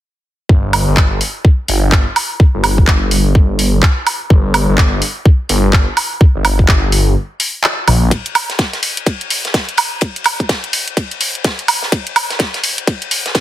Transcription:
0.49 G1, kick
0.73 open hi-hat, high woodblock
0.88 G1
0.97 kick, clap
1.21 open hi-hat
1.45 kick
1.68 G1, open hi-hat
1.92 kick, clap
2.16 open hi-hat, high woodblock
2.40 kick
2.54 G1
2.64 open hi-hat, high woodblock
2.78 kick
2.87 G1, kick, clap
3.11 open hi-hat
3.35 G1, kick
3.59 open hi-hat
3.83 kick, clap
4.07 open hi-hat, high woodblock
4.30 G1, kick
4.54 open hi-hat, high woodblock
4.68 G1
4.78 kick, clap
5.02 open hi-hat
5.26 kick
5.49 G1, open hi-hat
5.73 kick, clap
5.97 open hi-hat, high woodblock
6.21 kick
6.35 G1
6.45 open hi-hat, high woodblock
6.59 kick
6.68 G1, kick, clap
6.92 open hi-hat
7.40 open hi-hat
7.64 clap
7.88 A#1, open hi-hat, high woodblock
8.11 kick, closed hi-hat, ride
8.26 closed hi-hat
8.35 open hi-hat, ride, high woodblock
8.49 snare, closed hi-hat
8.59 kick, snare, closed hi-hat, ride
8.73 snare, closed hi-hat
8.83 open hi-hat, ride
8.97 closed hi-hat
9.06 kick, closed hi-hat, ride
9.21 closed hi-hat
9.30 open hi-hat, ride
9.45 snare, closed hi-hat
9.54 kick, snare, closed hi-hat, ride
9.69 closed hi-hat
9.77 open hi-hat, ride, high woodblock
10.01 kick, closed hi-hat, ride
10.16 closed hi-hat
10.24 open hi-hat, ride, high woodblock
10.40 kick, closed hi-hat
10.49 kick, snare, closed hi-hat, ride
10.64 closed hi-hat
10.73 open hi-hat, ride
10.88 closed hi-hat
10.97 kick, closed hi-hat, ride
11.11 closed hi-hat
11.21 open hi-hat, ride
11.35 closed hi-hat
11.44 kick, snare, closed hi-hat, ride
11.59 closed hi-hat
11.68 open hi-hat, ride, high woodblock
11.82 snare
11.92 kick, closed hi-hat, ride
12.07 closed hi-hat
12.16 open hi-hat, ride, high woodblock
12.30 snare, closed hi-hat
12.39 kick, snare, closed hi-hat, ride
12.54 snare, closed hi-hat
12.64 open hi-hat, ride
12.78 closed hi-hat
12.87 kick, closed hi-hat, ride
13.02 closed hi-hat
13.11 open hi-hat, ride
13.26 snare, closed hi-hat
13.35 kick, snare, closed hi-hat, ride

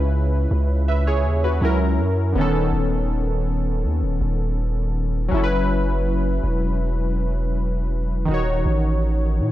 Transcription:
Already playing: C#2 C#3 C#4 E4 B4
0.51 C#2
0.88 B4 E5
1.07 G#4 C#5
1.25 D#2
1.44 F#4 B4
1.61 C#2 F#3 C#4 E4
1.65 A#4
1.99 F#2
2.32 D#1 D3 B3
2.38 D#3 C#4 A4
2.73 D#1
3.84 D#2
4.02 D#1
4.21 D#1
5.29 F#1 F#3 C#4
5.34 E4 A4
5.44 B4
6.44 E1
8.25 D#1 D#3 D#4
8.31 F#4 C#5
8.66 A1
9.40 A#2

